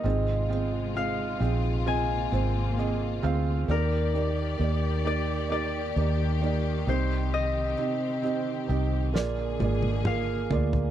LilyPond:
<<
  \new Staff \with { instrumentName = "Harp" } { \time 4/4 \key ees \major \tempo 4 = 66 ees''4 f''4 aes''4. r8 | bes'4. d''8 d''4. c''8 | ees''2 r4 f''4 | }
  \new Staff \with { instrumentName = "Felt piano" } { \time 4/4 \key ees \major <c' f' aes' ees''>8 <c' f' aes' ees''>8 <c' f' aes' ees''>8 <c' f' aes' ees''>8 <c' f' aes' ees''>8 <c' f' aes' c''>8 <c' f' aes' ees''>8 <c' f' aes' f''>8 | <bes ees' g' d''>8 <bes ees' g' d''>8 <bes ees' g' d''>8 <bes ees' g' d''>8 <bes ees' g' d''>8 <bes ees' g' d''>8 <bes ees' g' d''>8 <c' ees' g' ees''>8~ | <c' ees' g' ees''>8 <c' ees' g' ees''>8 <c' ees' g' ees''>8 <c' ees' g' ees''>8 <bes f' aes' d''>8 <bes f' aes' d''>8 <bes f' aes' bes'>8 <bes f' aes' d''>8 | }
  \new Staff \with { instrumentName = "Felt piano" } { \clef bass \time 4/4 \key ees \major aes,4. r2 r8 | ees4. r2 c8~ | c4 r4 bes,4. r8 | }
  \new Staff \with { instrumentName = "String section" } { \time 4/4 \key ees \major << { <c f'>1 | <ees g'>1~ | <ees g'>2 <d aes'>2 | } \\ { aes2 bes2 | d''2.~ d''8 c'8~ | c'2 bes2 | } >> }
  \new Staff \with { instrumentName = "Fingered electric bass" } { \clef bass \time 4/4 \key ees \major aes,,4. bes,,4 aes,,4 d,8 | ees,4 ees,4. ees,4 c,8~ | c,8 r4 c,8 bes,,8 aes,,4 d,8 | }
  \new DrumStaff \with { instrumentName = "Drums" } \drummode { \time 4/4 r4 r4 r4 r4 | r4 r4 r4 r4 | r4 r4 sn8 tommh16 tommh16 toml8 tomfh16 tomfh16 | }
>>